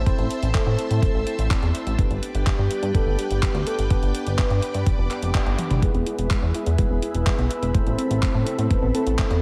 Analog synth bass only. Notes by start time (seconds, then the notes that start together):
0.19 A1
0.43 A1
0.67 A2
0.91 A2
1.15 A1
1.39 A1
1.63 E2
1.87 A1
2.11 G1
2.35 G1
2.59 G2
2.83 G2
3.06 G1
3.30 G1
3.54 D2
3.78 G1
4.02 G1
4.26 G1
4.50 G2
4.74 G2
4.99 F1
5.23 F1
5.47 G1
5.70 G1
5.95 E1
6.18 E1
6.42 E2
6.67 E2
6.91 E1
7.15 E1
7.39 B1
7.62 E1
7.86 A1
8.11 A1
8.34 A2
8.58 A2
8.83 A1
9.07 A1
9.31 E2